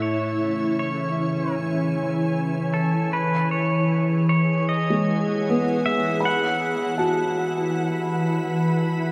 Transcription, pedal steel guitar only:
0.02 C#5
0.79 C#5
2.74 A4
3.13 B4
3.51 C#5
4.29 C#5
4.69 D#5
5.86 E5
6.25 F#5

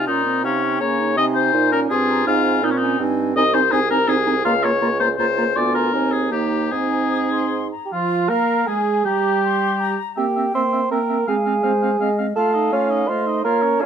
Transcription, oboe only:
0.07 D#4
0.44 C#4
0.80 C#5
1.17 D#5
1.35 C5
1.72 A#4
1.90 G#4
2.27 F4
2.64 D#4
2.71 C#4
2.77 D#4
3.36 D#5
3.54 C5
3.71 G#4
3.90 A#4
4.08 G#4
4.45 F5
4.64 C#5
5.00 C5
5.18 C5
5.56 D5
5.75 A#4
6.12 G#4
6.32 G4
6.71 G#4
7.92 F4
8.29 A#4
8.67 G#4
9.05 G4
10.16 E5
10.36 E5
10.54 E5
10.73 E5
10.91 E5
11.09 E5
11.27 F5
11.46 F5
11.63 F5
11.82 F5
12.01 F5
12.18 F5
12.37 F5
12.54 D#5
12.73 F5
12.90 D#5
13.09 F5
13.27 D#5
13.44 F5
13.62 C#5
13.81 F5

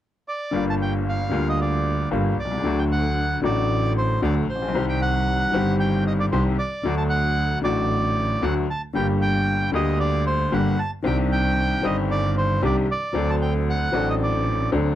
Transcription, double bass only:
0.53 G1
1.32 D2
2.11 G1
2.37 C2
2.63 D2
3.43 A1
4.23 D2
4.49 A#1
4.74 C2
5.53 G1
6.32 C2
6.84 D2
7.63 A1
8.42 D2
8.95 G1
9.73 D2
10.52 G1
11.05 C2
11.83 G1
12.62 C2
13.15 D2
13.94 A1
14.73 D2

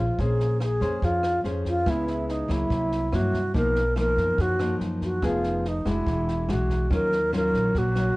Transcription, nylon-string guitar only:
Already playing: F3
0.19 A#3 C#4 G#4 C5
0.81 C#4 G#4 C5
1.02 F3
1.44 C#4 G#4 C5
1.86 C#3 G#3 B3 E4
2.48 F#3 A#3 E4
2.70 C3
3.12 F#3 A#3 E4
3.54 B2 F3 A#3 D#4
3.96 F3 A#3 D#4
4.37 F#2
4.59 F3 A#3 D#4
5.22 F3 B3 D#4 G#4
5.85 G#3 D4 F#4
6.06 E3
6.48 G#3 D4 F#4
6.90 D#3 F#3 C#4 F4
7.32 F#3 C#4 F4
7.75 A#2
7.96 F#3 C#4

